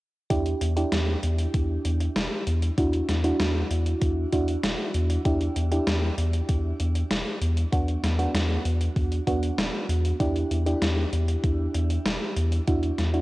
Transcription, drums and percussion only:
0.30 kick, closed hi-hat
0.46 closed hi-hat
0.61 closed hi-hat
0.77 closed hi-hat
0.92 snare, closed hi-hat
1.23 closed hi-hat
1.39 closed hi-hat
1.54 kick, closed hi-hat
1.85 closed hi-hat
2.00 closed hi-hat
2.16 snare, closed hi-hat
2.47 closed hi-hat
2.62 closed hi-hat
2.78 kick, closed hi-hat
2.93 closed hi-hat
3.09 snare, closed hi-hat
3.24 closed hi-hat
3.40 snare, closed hi-hat
3.71 closed hi-hat
3.86 closed hi-hat
4.01 kick, closed hi-hat
4.32 kick, closed hi-hat
4.48 closed hi-hat
4.63 snare, closed hi-hat
4.94 closed hi-hat
5.10 closed hi-hat
5.25 kick, closed hi-hat
5.41 closed hi-hat
5.56 closed hi-hat
5.72 closed hi-hat
5.87 snare, closed hi-hat
6.18 closed hi-hat
6.33 closed hi-hat
6.49 kick, closed hi-hat
6.80 closed hi-hat
6.95 closed hi-hat
7.11 snare, closed hi-hat
7.42 closed hi-hat
7.57 closed hi-hat
7.73 kick, closed hi-hat
7.88 closed hi-hat
8.04 snare, closed hi-hat
8.19 closed hi-hat
8.35 snare, closed hi-hat
8.65 closed hi-hat
8.81 closed hi-hat
8.96 kick, closed hi-hat
9.12 closed hi-hat
9.27 kick, closed hi-hat
9.43 closed hi-hat
9.58 snare, closed hi-hat
9.89 closed hi-hat
10.05 closed hi-hat
10.20 kick, closed hi-hat
10.36 closed hi-hat
10.51 closed hi-hat
10.67 closed hi-hat
10.82 snare, closed hi-hat
11.13 closed hi-hat
11.28 closed hi-hat
11.44 kick, closed hi-hat
11.75 closed hi-hat
11.90 closed hi-hat
12.06 snare, closed hi-hat
12.37 closed hi-hat
12.52 closed hi-hat
12.67 kick, closed hi-hat
12.83 closed hi-hat
12.98 snare, closed hi-hat
13.14 closed hi-hat

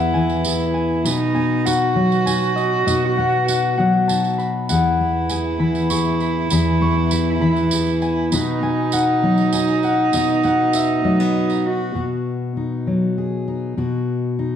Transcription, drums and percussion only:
0.29 tambourine
0.45 tambourine
0.60 tambourine
1.06 tambourine
1.66 tambourine
2.12 tambourine
2.27 tambourine
2.43 tambourine
2.58 tambourine
2.88 tambourine
3.48 tambourine
4.09 tambourine
4.24 tambourine
4.40 tambourine
4.69 tambourine
5.29 tambourine
5.75 tambourine
5.90 tambourine
6.20 tambourine
6.50 tambourine
7.11 tambourine
7.56 tambourine
7.71 tambourine
7.87 tambourine
8.02 tambourine
8.32 tambourine
8.92 tambourine
9.38 tambourine
9.53 tambourine
9.68 tambourine
9.83 tambourine
10.13 tambourine
10.28 tambourine
10.43 tambourine
10.73 tambourine
11.50 tambourine

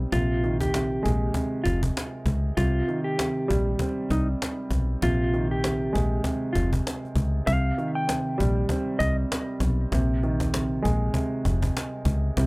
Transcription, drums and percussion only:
0.12 cajon bass
0.44 cajon slap
0.60 cajon bass
0.74 cajon slap
1.06 cajon bass
1.34 cajon bass
1.66 cajon bass
1.83 cajon bass
1.97 cajon slap
2.26 cajon bass
2.57 cajon bass
2.89 cajon slap
3.19 cajon slap
3.51 cajon bass
3.79 cajon bass
4.11 cajon bass
4.42 cajon slap
4.71 cajon bass
5.02 cajon bass
5.34 cajon slap
5.64 cajon slap
5.95 cajon bass
6.24 cajon bass
6.55 cajon bass
6.73 cajon bass
6.87 cajon slap
7.05 cajon slap
7.16 cajon bass
7.47 cajon bass
7.78 cajon slap
8.09 cajon slap
8.40 cajon bass
8.69 cajon bass
9.00 cajon bass
9.32 cajon slap
9.60 cajon bass
9.92 cajon bass
10.23 cajon slap
10.40 cajon bass
10.54 cajon slap
10.85 cajon bass
11.14 cajon bass
11.45 cajon bass
11.62 cajon bass
11.77 cajon slap
12.05 cajon bass
12.37 cajon bass

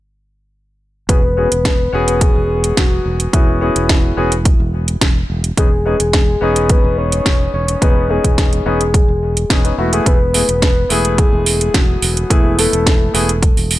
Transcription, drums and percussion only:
1.09 kick, closed hi-hat
1.52 closed hi-hat
1.65 kick, snare, closed hi-hat
2.08 closed hi-hat
2.21 kick, closed hi-hat
2.64 closed hi-hat
2.77 kick, snare, closed hi-hat
3.20 closed hi-hat
3.33 kick, closed hi-hat
3.76 closed hi-hat
3.89 kick, snare, closed hi-hat
4.32 closed hi-hat
4.45 kick, closed hi-hat
4.88 closed hi-hat
5.01 kick, snare, closed hi-hat
5.44 closed hi-hat
5.57 kick, closed hi-hat
6.00 closed hi-hat
6.13 kick, snare, closed hi-hat
6.56 closed hi-hat
6.69 kick, closed hi-hat
7.12 closed hi-hat
7.26 kick, snare, closed hi-hat
7.68 closed hi-hat
7.82 kick, closed hi-hat
8.24 kick, closed hi-hat
8.38 kick, snare, closed hi-hat
8.53 closed hi-hat
8.81 closed hi-hat
8.94 kick, closed hi-hat
9.37 closed hi-hat
9.50 kick, snare, closed hi-hat
9.65 closed hi-hat
9.93 closed hi-hat
10.06 kick, closed hi-hat
10.34 open hi-hat
10.49 closed hi-hat
10.62 kick, snare, closed hi-hat
10.90 open hi-hat
11.05 closed hi-hat
11.18 kick, closed hi-hat
11.46 open hi-hat
11.61 closed hi-hat
11.74 kick, snare, closed hi-hat
12.02 open hi-hat
12.17 closed hi-hat
12.30 kick, closed hi-hat
12.59 open hi-hat
12.73 closed hi-hat
12.86 kick, snare, closed hi-hat
13.15 open hi-hat
13.29 closed hi-hat
13.43 kick, closed hi-hat
13.57 open hi-hat
13.71 open hi-hat

